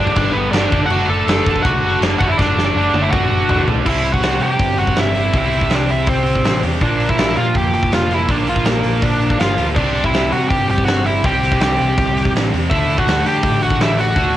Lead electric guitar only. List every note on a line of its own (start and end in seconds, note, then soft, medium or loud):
0.00 0.16 D4 medium
0.00 0.11 D5 loud
0.13 0.33 D5 loud
0.17 0.34 D4 medium
0.33 0.54 B3 medium
0.33 0.51 B4 medium
0.51 0.80 D4 medium
0.51 0.78 D5 loud
0.86 1.08 F#5 loud
0.91 1.08 F#4 medium
1.06 1.61 A4 medium
1.06 1.65 A5 loud
1.63 2.00 F#4 medium
1.63 1.98 F#5 loud
2.18 2.30 F#4 medium
2.18 2.28 F#5 medium
2.29 2.39 E4 medium
2.29 2.39 E5 medium
2.37 2.66 D4 medium
2.37 2.63 D5 loud
2.64 3.01 D4 medium
2.64 3.04 D5 medium
3.02 3.12 E4 medium
3.02 3.10 E5 medium
3.11 3.64 F#4 medium
3.11 3.63 F#5 medium
3.86 4.12 E4 medium
3.86 4.13 E5 loud
4.12 4.39 F#4 medium
4.12 4.42 F#5 loud
4.42 4.76 G4 medium
4.42 4.77 G5 loud
4.79 4.96 F#4 medium
4.79 4.97 F#5 medium
4.99 5.33 E4 medium
4.99 5.36 E5 medium
5.35 5.69 E4 medium
5.35 5.74 E5 loud
5.74 5.90 D4 medium
5.74 5.91 D5 loud
5.90 6.07 E4 medium
5.90 6.08 E5 loud
6.08 6.60 C4 medium
6.08 6.60 C5 loud
6.82 7.08 D4 medium
6.82 7.10 D5 loud
7.09 7.35 E4 medium
7.09 7.37 E5 loud
7.37 7.55 F4 medium
7.37 7.56 F5 medium
7.56 7.73 G4 medium
7.56 7.73 G5 medium
7.74 7.91 G4 medium
7.74 7.93 G5 medium
7.93 8.11 F4 medium
7.93 8.14 F5 medium
8.14 8.30 E4 medium
8.14 8.31 E5 medium
8.31 8.48 D4 medium
8.31 8.49 D5 loud
8.49 8.66 F4 medium
8.49 8.68 F5 medium
8.66 9.01 A#3 medium
8.66 9.05 A#4 medium
9.02 9.37 D4 medium
9.02 9.41 D5 medium
9.40 9.66 F4 medium
9.40 9.66 F5 loud
9.76 10.02 D4 medium
9.76 10.02 D5 loud
10.04 10.31 E4 medium
10.04 10.30 E5 medium
10.32 10.49 F#4 medium
10.32 10.48 F#5 medium
10.49 10.67 G4 medium
10.49 10.67 G5 loud
10.70 10.86 G4 medium
10.70 10.85 G5 medium
10.85 11.04 F#4 medium
10.85 11.05 F#5 loud
11.07 11.24 E4 medium
11.07 11.25 E5 medium
11.26 11.59 G4 medium
11.26 11.62 G5 loud
11.63 12.31 G4 medium
11.63 12.31 G5 medium
12.70 12.96 E4 medium
12.70 12.96 E5 loud
12.98 13.23 F#4 medium
12.98 13.27 F#5 loud
13.26 13.60 G4 medium
13.26 13.61 G5 loud
13.62 13.79 F#4 medium
13.62 13.80 F#5 medium
13.81 13.98 E4 medium
13.81 14.00 E5 loud
13.97 14.37 F#4 medium
13.97 14.37 F#5 medium